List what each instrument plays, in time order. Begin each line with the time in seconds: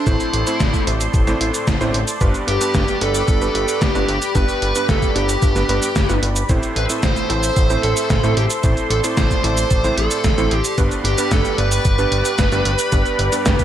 Already playing: analog synth pad A4 C5 C6
0.07 analog synth bass A1, electric grand piano A2 A3 C4 E4 C5, lead electric guitar E4, analog synth pad D5, kick, closed hi-hat, cabasa
0.20 closed hi-hat, cabasa
0.33 analog synth bass A1, closed hi-hat
0.47 electric grand piano A2 A3 C4 E4 C5, closed hi-hat, cabasa
0.60 analog synth bass A1, kick, snare, closed hi-hat, cabasa
0.74 kick, closed hi-hat, cabasa
0.87 analog synth bass A1, electric grand piano A2 A3 C4 E4 C5, closed hi-hat
1.01 closed hi-hat, cabasa
1.14 analog synth bass A1, kick, closed hi-hat, cabasa
1.27 electric grand piano A2 A3 C4 E4 C5, snare, closed hi-hat, cabasa
1.41 analog synth bass A1, closed hi-hat
1.54 closed hi-hat, cabasa
1.67 analog synth bass A1, kick, snare, closed hi-hat, cabasa
1.81 analog synth bass A1, electric grand piano A2 A3 C4 E4 C5, closed hi-hat, cabasa
1.94 analog synth bass A1, closed hi-hat
2.08 closed hi-hat, cabasa
2.21 analog synth bass G1, electric grand piano G2 G3 B3 D4 B4, analog synth pad G4 B4 B5, kick, closed hi-hat, cabasa
2.34 closed hi-hat, cabasa
2.48 analog synth bass G1, lead electric guitar G4, closed hi-hat
2.61 electric grand piano G2 G3 B3 D4 B4, closed hi-hat, cabasa
2.74 analog synth bass G1, kick, snare, closed hi-hat, cabasa
2.88 closed hi-hat, cabasa
3.01 analog synth bass G1, electric grand piano G2 G3 B3 D4 B4, lead electric guitar A4, closed hi-hat
3.15 closed hi-hat, cabasa
3.28 analog synth bass G1, lead electric guitar A4, kick, closed hi-hat, cabasa
3.42 electric grand piano G2 G3 B3 D4 B4, closed hi-hat, cabasa
3.55 analog synth bass G1, closed hi-hat
3.68 closed hi-hat, cabasa
3.82 analog synth bass G1, lead electric guitar G4, kick, snare, closed hi-hat, cabasa
3.95 analog synth bass G1, electric grand piano G2 G3 B3 D4 B4, closed hi-hat, cabasa
4.09 analog synth bass G1, closed hi-hat
4.22 closed hi-hat, cabasa
4.35 analog synth bass G1, electric grand piano G2 G3 B3 D4 B4, lead electric guitar B4, kick, closed hi-hat, cabasa
4.49 closed hi-hat, cabasa
4.62 analog synth bass G1, closed hi-hat
4.75 electric grand piano G2 G3 B3 D4 B4, closed hi-hat, cabasa
4.89 analog synth bass G1, lead electric guitar A4, kick, snare, closed hi-hat, cabasa
5.02 kick, closed hi-hat, cabasa
5.16 analog synth bass G1, electric grand piano G2 G3 B3 D4 B4, lead electric guitar G4, closed hi-hat
5.29 closed hi-hat, cabasa
5.42 analog synth bass G1, kick, closed hi-hat, cabasa
5.56 electric grand piano G2 G3 B3 D4 B4, snare, closed hi-hat, cabasa
5.69 analog synth bass G1, electric grand piano G2 G3 B3 D4 B4, closed hi-hat
5.83 closed hi-hat, cabasa
5.96 analog synth bass G1, kick, snare, closed hi-hat, cabasa
6.09 analog synth bass G1, electric grand piano G2 G3 B3 D4 B4, closed hi-hat, cabasa
6.23 analog synth bass G1, closed hi-hat
6.36 closed hi-hat, cabasa
6.49 analog synth bass A1, electric grand piano A2 A3 C4 E4 C5, analog synth pad A4 C5 E5 C6, kick, closed hi-hat, cabasa
6.63 closed hi-hat, cabasa
6.76 analog synth bass A1, lead electric guitar B4, closed hi-hat
6.90 electric grand piano A2 A3 C4 E4 C5, closed hi-hat, cabasa
7.03 analog synth bass A1, lead electric guitar C5, kick, snare, closed hi-hat, cabasa
7.16 closed hi-hat, cabasa
7.30 analog synth bass A1, electric grand piano A2 A3 C4 E4 C5, lead electric guitar C5, closed hi-hat
7.43 closed hi-hat, cabasa
7.57 analog synth bass A1, kick, closed hi-hat, cabasa
7.70 electric grand piano A2 A3 C4 E4 C5, closed hi-hat, cabasa
7.83 analog synth bass A1, lead electric guitar A4, closed hi-hat
7.97 closed hi-hat, cabasa
8.10 analog synth bass A1, kick, snare, closed hi-hat, cabasa
8.24 analog synth bass A1, electric grand piano A2 A3 C4 E4 C5, closed hi-hat, cabasa
8.37 analog synth bass A1, lead electric guitar G4, closed hi-hat
8.50 closed hi-hat, cabasa
8.64 analog synth bass A1, electric grand piano A2 A3 C4 E4 C5, analog synth pad D5, kick, closed hi-hat, cabasa
8.77 closed hi-hat, cabasa
8.90 analog synth bass A1, lead electric guitar A4, closed hi-hat
9.04 electric grand piano A2 A3 C4 E4 C5, closed hi-hat, cabasa
9.17 analog synth bass A1, lead electric guitar C5, kick, snare, closed hi-hat, cabasa
9.31 kick, closed hi-hat, cabasa
9.44 analog synth bass A1, electric grand piano A2 A3 C4 E4 C5, lead electric guitar C5, closed hi-hat
9.57 closed hi-hat, cabasa
9.71 analog synth bass A1, kick, closed hi-hat, cabasa
9.84 electric grand piano A2 A3 C4 E4 C5, snare, closed hi-hat, cabasa
9.98 analog synth bass A1, lead electric guitar A4, closed hi-hat
10.11 closed hi-hat, cabasa
10.24 analog synth bass A1, kick, snare, closed hi-hat, cabasa
10.38 analog synth bass A1, electric grand piano A2 A3 C4 E4 C5, closed hi-hat, cabasa
10.51 analog synth bass A1, lead electric guitar G4, closed hi-hat
10.65 closed hi-hat, cabasa
10.78 analog synth bass G1, electric grand piano G2 G3 B3 D4 B4, analog synth pad G4 B4 D5 B5, kick, closed hi-hat, cabasa
10.91 closed hi-hat, cabasa
11.05 analog synth bass G1, lead electric guitar G4, closed hi-hat
11.18 electric grand piano G2 G3 B3 D4 B4, closed hi-hat, cabasa
11.32 analog synth bass G1, lead electric guitar A4, kick, snare, closed hi-hat, cabasa
11.45 closed hi-hat, cabasa
11.58 analog synth bass G1, electric grand piano G2 G3 B3 D4 B4, lead electric guitar B4, closed hi-hat
11.72 closed hi-hat, cabasa
11.85 analog synth bass G1, kick, closed hi-hat, cabasa
11.99 electric grand piano G2 G3 B3 D4 B4, closed hi-hat, cabasa
12.12 analog synth bass G1, closed hi-hat
12.25 closed hi-hat, cabasa
12.39 analog synth bass G1, kick, snare, closed hi-hat, cabasa
12.52 analog synth bass G1, electric grand piano G2 G3 B3 D4 B4, closed hi-hat, cabasa
12.65 analog synth bass G1, closed hi-hat
12.79 closed hi-hat, cabasa
12.92 analog synth bass G1, electric grand piano G2 G3 B3 D4 B4, kick, closed hi-hat, cabasa
13.06 closed hi-hat, cabasa
13.19 analog synth bass G1, closed hi-hat
13.32 electric grand piano G2 G3 B3 D4 B4, closed hi-hat, cabasa
13.46 analog synth bass G1, kick, snare, closed hi-hat, cabasa
13.59 kick, closed hi-hat, cabasa